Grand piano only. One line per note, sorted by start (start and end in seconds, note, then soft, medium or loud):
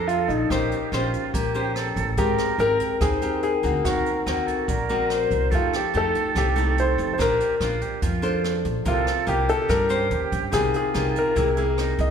0.08 0.30 F4 medium
0.28 1.09 D#4 medium
2.18 2.61 G4 medium
2.60 3.03 A#4 loud
3.01 3.40 G#4 medium
3.43 3.82 G#4 medium
3.85 5.06 F#4 medium
5.55 5.73 F4 medium
5.76 5.94 G4 medium
5.97 6.38 A4 medium
6.38 6.80 G4 medium
6.80 7.12 C5 medium
7.13 7.20 C5 medium
7.22 8.41 A#4 medium
8.88 9.30 F4 medium
9.29 9.50 G4 medium
9.50 9.70 A4 medium
9.70 10.28 A#4 loud
10.53 10.75 G#4 medium
10.76 11.14 G#4 medium
11.19 11.96 A#4 medium
12.01 12.11 D#5 medium